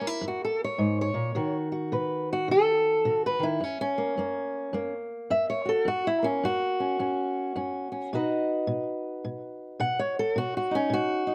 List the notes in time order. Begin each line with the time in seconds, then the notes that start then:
Already playing: F#2
0.01 A#3
0.07 E4
0.21 F#2
0.28 F#4
0.45 A4
0.64 C#5
0.78 G#2
1.01 C#5
1.14 A#2
1.35 B2 D#3 F#4
1.72 F#4
1.92 B2 B4
2.33 F#4
2.48 B2 A4
3.05 B2 F#4
3.26 B4
3.39 D#3 E4
3.60 F#2 C#4
3.81 C#4
3.98 A#3
4.17 F#2 A#3
4.73 F#2 A#3
5.30 F#2 E5
5.50 C#5
5.65 F#4 A4
5.85 F#2 F#4
6.07 E4
6.23 A#3 C#4
6.43 F#2 F#4
6.80 C#4
6.99 F#2 C#4
7.56 F#2 C#4
7.92 C#4
8.13 B2 D#4 F#4 B4 D#5
8.67 B2
9.24 B2
9.80 B2 F#5
9.99 C#5
10.19 A4
10.36 B2 F#4
10.57 F#4
10.71 C#4 D#4
10.90 B2 F#4
11.27 D#4